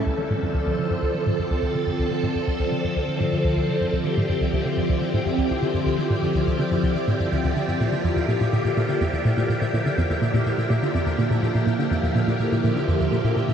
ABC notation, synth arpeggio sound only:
X:1
M:4/4
L:1/16
Q:1/4=124
K:Dm
V:1 name="Synth arpeggio sound" clef=bass
D,, F, A,, G,, D,, D,, D, G,, D,, F, A,, G,, D,, D,, D, G,, | D,, F, A,, G,, D,, D,, D, G,, D,, F, A,, G,, D,, D,, D, G,, | D,, F, A,, G,, D,, D,, D, G,, D,, F, A,, G,, D,, D,, D, G,, | D,, F, A,, G,, D,, D,, D, G,, D,, F, A,, G,, D,, D,, D, G,, |
B,, D, F,, E,, B,, B,, B,, B,, B,, D, F,, E,, B,, B,, B,, B,, | B,, D, F,, E,, B,, B,, B,, B,, B,, D, F,, E,, B,, B,, B,, B,, | B,, D, F,, E,, B,, B,, B,, B,, B,, D, F,, E,, B,, B,, B,, B,, |]